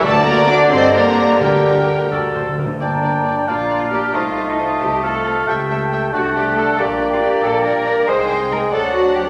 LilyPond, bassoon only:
\new Staff \with { instrumentName = "Bassoon" } { \time 6/8 \key g \minor \tempo 4. = 91 d2.~ | d2~ d8 r8 | d'4. d'4. | a2. |
a4. a4. | bes2. | aes4. fis4 r8 | }